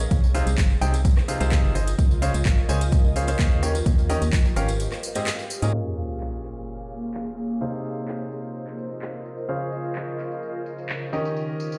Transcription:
Already playing: G#4 C#5 F5
0.00 tambourine
0.11 C2 F4, kick, closed hi-hat, tambourine
0.24 tambourine
0.34 C3 D#4 G#4 C5 F5, open hi-hat, tambourine
0.41 A#4 D#5
0.47 C2, closed hi-hat, tambourine
0.58 G1, kick, clap, closed hi-hat, tambourine
0.70 tambourine
0.81 C2 C3 D#4 G#4 C5 G5, open hi-hat, tambourine
0.94 closed hi-hat, tambourine
1.05 kick, closed hi-hat, tambourine
1.17 cross-stick, clap, tambourine
1.28 C3 D#4 G#4 C5 F5, open hi-hat, tambourine
1.40 C2 C3 D#4 G#4 C5 F5, closed hi-hat, tambourine
1.51 kick, cross-stick, clap, closed hi-hat, tambourine
1.64 G1, tambourine
1.75 D#4 G#4 C5 D#5, open hi-hat, tambourine
1.87 closed hi-hat, tambourine
1.99 C#2, kick, closed hi-hat, tambourine
2.11 tambourine
2.22 C#3 C#4 G#4 C5 F5, open hi-hat, tambourine
2.34 C#2, closed hi-hat, tambourine
2.45 G#1, kick, clap, closed hi-hat, tambourine
2.57 tambourine
2.69 C#2 C#3 C#4 G#4 C5 G#5, open hi-hat, tambourine
2.81 closed hi-hat, tambourine
2.92 kick, closed hi-hat, tambourine
3.04 C#2, tambourine
3.16 C#3 C#4 G#4 C5 F5, open hi-hat, tambourine
3.28 C#3 C#4 G#4 C5 F5, closed hi-hat, tambourine
3.39 D#2, kick, clap, closed hi-hat, tambourine
3.51 tambourine
3.63 D#3 C#4 G4 A#4 C#5, cross-stick, open hi-hat, tambourine
3.75 closed hi-hat, tambourine
3.86 D#2 C5, kick, closed hi-hat, tambourine
3.98 tambourine
4.09 D#3 C#4 G4 A#4 D#5, open hi-hat, tambourine
4.16 F5
4.22 D#2, closed hi-hat, tambourine
4.33 A#1, kick, clap, closed hi-hat, tambourine
4.44 tambourine
4.56 G#1 C#4 G4 A#4 F5, cross-stick, open hi-hat, tambourine
4.68 closed hi-hat, tambourine
4.80 closed hi-hat, tambourine
4.92 cross-stick, clap, tambourine
5.03 open hi-hat, tambourine
5.15 G#2 C4 G4 G#4 D#5, closed hi-hat, tambourine
5.26 cross-stick, clap, closed hi-hat, tambourine
5.39 tambourine
5.50 open hi-hat, tambourine
5.62 G#2 A#2 C#4 G#4 A#4 D#5, closed hi-hat, tambourine
5.74 A#2 A#3 C#4 G#4 A#4, sub drop
5.97 G#4, tambourine
6.10 tambourine
6.20 clap
6.28 C#5
6.44 clap, tambourine
6.56 tambourine
6.68 tambourine
6.91 tambourine
7.03 tambourine
7.14 clap
7.38 tambourine
7.50 tambourine
7.61 C3 D#4 G#4 C5 F5, tambourine
7.75 F4
7.85 D#5, tambourine
7.97 A#4, tambourine
8.08 clap
8.32 tambourine
8.44 tambourine
8.55 tambourine
8.67 clap
8.79 tambourine
8.91 tambourine
9.02 clap, tambourine
9.26 tambourine
9.38 tambourine
9.49 C#3 C#4 G#4 C5 F5, tambourine
9.72 tambourine
9.85 tambourine
9.95 clap, tambourine
10.19 clap, tambourine
10.32 tambourine
10.43 tambourine
10.66 tambourine
10.78 tambourine
10.89 clap, tambourine
11.13 D#3 C#4 G4 A#4 D#5, tambourine
11.20 C5
11.25 tambourine
11.32 G4
11.36 tambourine
11.60 F5, tambourine
11.72 tambourine

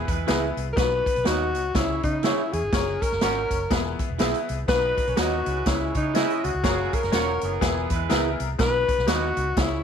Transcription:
Already playing: E3 B3 E4 G#4 B4
0.07 E2 G#3 E4 B4, kick, closed hi-hat, tambourine
0.27 C#2 B3 E4 G#4 B4 E5, snare, closed hi-hat, tambourine
0.57 C2, closed hi-hat, tambourine
0.73 B2 B3 D#4 F#4 A#4 B4
0.77 B1 B4, kick, snare, closed hi-hat, tambourine
1.06 kick, closed hi-hat, tambourine
1.16 B1, closed hi-hat
1.24 D#2 B3 D#4 F#4 B4 C#5 D#5, snare, closed hi-hat, tambourine
1.55 C#2, closed hi-hat, tambourine
1.75 C#2 C#3 C#4 E4 G#4 C#5, kick, snare, closed hi-hat, tambourine
2.03 C#3 D#4, kick, closed hi-hat, tambourine
2.23 C#4 E4 G#4 C#5 E5, snare, closed hi-hat, tambourine
2.53 E2 G#4, closed hi-hat, tambourine
2.63 G1
2.72 F#1 C#4 F#4 A#4 C#5, kick, snare, closed hi-hat, tambourine
3.02 A#4, kick, closed hi-hat, tambourine
3.12 F#1, snare
3.21 G#1 C#4 F#4 A#4 C#5 F#5, snare, closed hi-hat, tambourine
3.51 F#1, kick, closed hi-hat, tambourine
3.71 E1 E3 B3 E4 G#4 B4, kick, snare, closed hi-hat, tambourine
3.99 muted fingered electric bass stroke, kick, closed hi-hat, tambourine
4.10 E1
4.18 B1 B3 E4 G#4 B4 E5, snare, closed hi-hat, tambourine
4.34 closed hi-hat
4.49 C2, closed hi-hat, tambourine
4.68 B1 B2 F#3 B3 D#4 F#4 B4, kick, snare, closed hi-hat, tambourine
4.98 kick, closed hi-hat, tambourine
5.07 B1 C#4 A#4 C#5, closed hi-hat
5.16 D#2 B3 D#4 F#4 B4 C#5 D#5, snare, closed hi-hat, tambourine
5.45 C#2 G#3 E4 B4, closed hi-hat, tambourine
5.66 C#2 C#3 C#4 E4 G#4 C#5, kick, snare, closed hi-hat, tambourine
5.94 C#3 G#3 D#4 E4 C#5, kick, closed hi-hat, tambourine
6.14 G#3 C#4 E4 G#4 C#5 D#5 E5, snare, closed hi-hat, tambourine
6.30 closed hi-hat
6.44 C#2 F#4, closed hi-hat, tambourine
6.54 C#2
6.63 F#1 C#3 A#3 C#4 F#4 G#4 A#4 C#5, kick, snare, closed hi-hat, tambourine
6.93 A#4, kick, closed hi-hat, tambourine
7.03 F#1 F#3 C#4 A#4, snare, closed hi-hat
7.12 E1 A#3 C#4 F#4 A#4 C#5 F#5, snare, closed hi-hat, tambourine
7.41 F#1 E3 B3 G#4, closed hi-hat, tambourine
7.61 E1 E3 B3 E4 G#4 B4, kick, snare, closed hi-hat, tambourine
7.90 E2 G#3 E4 B4, kick, closed hi-hat, tambourine
8.09 C#2 B3 E4 G#4 A#4 B4 E5, snare, closed hi-hat, tambourine
8.40 C2, closed hi-hat, tambourine
8.58 B1 B2 B3 D#4 F#4 B4, kick, snare, closed hi-hat, tambourine
8.88 kick, closed hi-hat, tambourine
8.98 B1, snare
9.07 D#2 B3 D#4 F#4 B4 D#5, snare, closed hi-hat, tambourine
9.37 C#2, closed hi-hat, tambourine
9.57 C#2 C#3 C#4 E4 G#4 C#5, kick, snare, closed hi-hat, tambourine

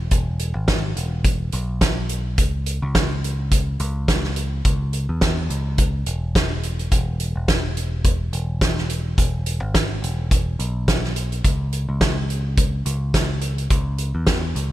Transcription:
0.11 E1, kick, closed hi-hat
0.39 closed hi-hat
0.55 G#1
0.68 kick, snare, closed hi-hat
0.96 E1, closed hi-hat
1.24 kick, closed hi-hat
1.52 B1, closed hi-hat
1.81 kick, snare, closed hi-hat
2.09 closed hi-hat
2.38 C#2, kick, closed hi-hat
2.66 closed hi-hat
2.82 C#2
2.95 kick, snare, closed hi-hat
3.24 closed hi-hat
3.51 kick, closed hi-hat
3.80 C#2, closed hi-hat
4.08 kick, snare, closed hi-hat
4.24 snare
4.36 closed hi-hat
4.65 C#2, kick, closed hi-hat
4.93 closed hi-hat
5.09 E2
5.21 kick, snare, closed hi-hat
5.50 C#2, closed hi-hat
5.78 kick, closed hi-hat
6.06 E1, closed hi-hat
6.35 kick, snare, closed hi-hat
6.63 closed hi-hat
6.79 closed hi-hat
6.92 E1, kick, closed hi-hat
7.20 closed hi-hat
7.36 E1
7.48 kick, snare, closed hi-hat
7.77 closed hi-hat
8.04 kick, closed hi-hat
8.33 E1, closed hi-hat
8.61 kick, snare, closed hi-hat
8.78 snare
8.90 closed hi-hat
9.18 E1, kick, closed hi-hat
9.46 closed hi-hat
9.62 G#1
9.74 kick, snare, closed hi-hat
10.02 E1, closed hi-hat
10.31 kick, closed hi-hat
10.59 B1, closed hi-hat
10.88 kick, snare, closed hi-hat
11.04 snare
11.16 closed hi-hat
11.32 closed hi-hat
11.44 C#2, kick, closed hi-hat
11.73 closed hi-hat
11.89 C#2
12.01 kick, snare, closed hi-hat
12.30 closed hi-hat
12.57 kick, closed hi-hat
12.86 C#2, closed hi-hat
13.14 kick, snare, closed hi-hat
13.41 closed hi-hat
13.58 closed hi-hat
13.70 C#2, kick, closed hi-hat
13.98 closed hi-hat
14.15 E2
14.27 kick, snare, closed hi-hat
14.56 C#2, closed hi-hat

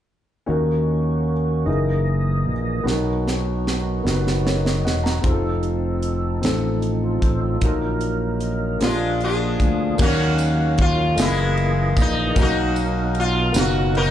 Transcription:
0.46 D#2 D#3 A#3 C#4 D#4 F#4 A#4
1.65 F#1 E3 A#3 D#4 E4 G#4 D#5
1.69 A#4
2.46 A#1
2.83 B1 B2 F#3 B3 D#4 F#4 A#4, snare
3.28 snare
3.67 snare
4.04 F#1 B3 D#4 F#4 A#4, snare
4.14 B4
4.27 snare
4.45 A#4 C#5, snare
4.64 B4 D#5, snare
4.84 E1 D#5 F#5, snare
5.04 F#5 A#5, snare
5.21 F1 F3 C4 D#4 F4 G#4 A4, kick, closed hi-hat
5.32 A4
5.63 closed hi-hat
6.03 closed hi-hat
6.41 A1 C4 D#4 F4 A4, snare, closed hi-hat
6.82 closed hi-hat
7.03 F4 A4
7.22 A1 A4 C5, kick, closed hi-hat
7.41 F4 A4
7.60 A#1 A#2 F#3 A#3 D#4 F#4 A#4, kick, closed hi-hat
7.65 A#4
8.01 closed hi-hat
8.40 closed hi-hat
8.79 A#1 A#2 F3 G#3 A#3 D4 F4 G4 G#4, snare, closed hi-hat
8.83 D4 F4
8.89 G#4
9.21 D4 F4 G#4, closed hi-hat
9.60 D2, kick, closed hi-hat
9.98 D#2 D#3 F#3 A#3 C#4 D#4 F#4, kick, crash, tambourine
10.02 C#4 F#4
10.38 ride, tambourine
10.78 F4, kick, ride
11.16 F#1 E3 A3 E4 G#4 D#5, snare, ride, tambourine
11.21 G#3 A#3 E4
11.57 ride
11.97 A#1, kick, ride, tambourine
12.01 D#4
12.34 B1 B2 F#3 A#3 C#4 D#4 F#4 A#4, kick, ride, tambourine
12.41 A#3 D#4 F#4
12.76 ride, tambourine
13.15 ride
13.20 F4
13.53 F#1 B3 D#4 F#4, snare, ride, tambourine
13.57 F#4 A#4
13.95 D#4 F#4 A#4, ride

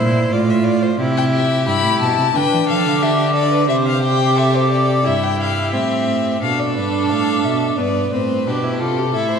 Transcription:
Already playing: A#2 E4 C5
0.32 A2 F4 D5
0.50 E5
0.65 D5
0.83 C5
1.00 C3 E4 G4
1.17 G5
1.34 E5
1.67 G2 E4 B5
1.84 A2
2.02 B2 A5
2.18 C3
2.35 D3 D4 B4 G5
2.52 E3
2.68 F3 A4 F5
2.86 D3
3.02 G4 E5
3.18 G4
3.34 A4 D5
3.52 B4
3.68 C3 G4 C5 E5
3.87 F5
4.04 G5
4.36 A4 E5
4.54 C5
4.72 D5
5.05 G2 E4 G4 E5
5.23 G5
5.41 F5
5.73 A2 C4 E5
6.43 B2 D4 A4 F5
6.59 D5
6.77 G2 B4
7.11 A2 F5
7.45 B2 E5
7.78 G2 B3 B4 D5
8.12 A2 C4 C5
8.47 B2 D4 G4 B4
8.63 E4
8.80 C3 F4 A4
8.98 G4
9.14 A2 E4 A4 E5
9.30 C5

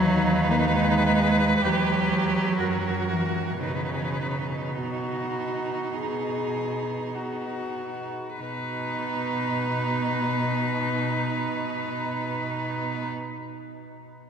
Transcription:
Already playing: D#2 F#3 D#4 B4
0.51 A#3
0.72 G#3
1.63 E2 F#3 G4
2.60 F#2 F#4 A#4
3.10 E3
3.64 B2 C#3 D#4 B4
4.76 B2 F#4
5.94 G#4
7.15 F#4
8.40 B2 D#4 B4

